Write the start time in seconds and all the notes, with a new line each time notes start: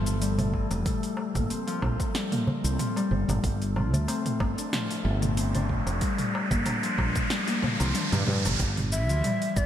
Already playing: G1 E3 F3 G3 A3 G4 A4
0.06 open hi-hat, shaker
0.21 G3, open hi-hat, shaker
0.38 A3, mid tom, open hi-hat, darbuka dum, shaker
0.53 E3, kick
0.71 F1, open hi-hat, darbuka ka, shaker
0.86 G3, kick, mid tom, open hi-hat, shaker
1.03 open hi-hat, shaker
1.17 darbuka tek
1.35 G1 A#3, kick, mid tom, open hi-hat, darbuka dum, shaker
1.50 C4, open hi-hat, shaker
1.67 F3, open hi-hat, shaker
1.82 A#1, kick, mid tom, darbuka tek
2.00 kick, open hi-hat, shaker
2.14 G3, snare, open hi-hat, shaker
2.31 A#3, mid tom, open hi-hat, shaker
2.47 darbuka dum
2.64 C2 C4, open hi-hat, shaker
2.79 F3, mid tom, open hi-hat, shaker
2.96 G3, open hi-hat, darbuka ka, shaker
3.11 G1, darbuka dum
3.28 G1, mid tom, open hi-hat, darbuka ka, shaker
3.44 G1, kick, open hi-hat, riser, shaker
3.62 open hi-hat, shaker
3.76 F3, mid tom, darbuka tek
3.93 D2 A3, open hi-hat, darbuka dum, shaker
4.08 C4, open hi-hat, darbuka tek, shaker
4.26 mid tom, open hi-hat, shaker
4.40 G1, kick, darbuka tek
4.57 D4, open hi-hat, shaker
4.72 F3, snare, mid tom, open hi-hat, shaker
4.91 open hi-hat, shaker
5.05 G1 A3
5.22 mid tom, open hi-hat, shaker
5.37 C4, open hi-hat, shaker
5.54 D4, open hi-hat, darbuka dum, shaker
5.69 F3, kick, mid tom
5.87 F1, open hi-hat, darbuka ka, shaker
6.01 G3, kick, open hi-hat, shaker
6.18 mid tom, open hi-hat, shaker
6.34 darbuka ka, darbuka tek
6.51 G1 A#3, kick, open hi-hat, darbuka dum, shaker
6.66 D4, mid tom, open hi-hat, darbuka tek, shaker
6.83 F3, open hi-hat, shaker
6.98 A#1, kick, darbuka tek
7.15 kick, mid tom, open hi-hat, shaker
7.30 G3, snare, open hi-hat, high tom, shaker
7.48 A#3, open hi-hat, high tom, shaker
7.62 mid tom, high tom, darbuka dum
7.80 C2 F3, open hi-hat, mid tom, darbuka tek, shaker
7.95 D4, open hi-hat, mid tom, shaker
8.12 G2 G4, mid tom, open hi-hat, darbuka ka, shaker
8.27 G2 F3, mid tom, darbuka dum
8.45 G1, mid tom, open hi-hat, darbuka ka, shaker
8.60 G1, kick, open hi-hat, shaker
8.77 mid tom, open hi-hat
8.92 E3 E5, shaker
9.09 D2 F3, open hi-hat, shaker
9.24 G3, mid tom, open hi-hat, shaker
9.42 open hi-hat
9.56 G1 D5, kick, shaker